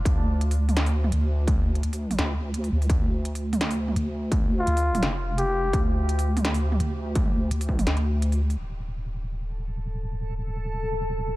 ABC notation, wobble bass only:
X:1
M:4/4
L:1/8
Q:"Swing 16ths" 1/4=169
K:Dm
V:1 name="Wobble bass" clef=bass
D,,6 D,,2- | D,,2 D,,2 D,,3 D,, | D,,6 D,,2- | D,,2 D,,2 F,,,4 |
D,,6 D,,2- | D,,2 D,,2 D,,4 | D,,,8- | D,,,8 |]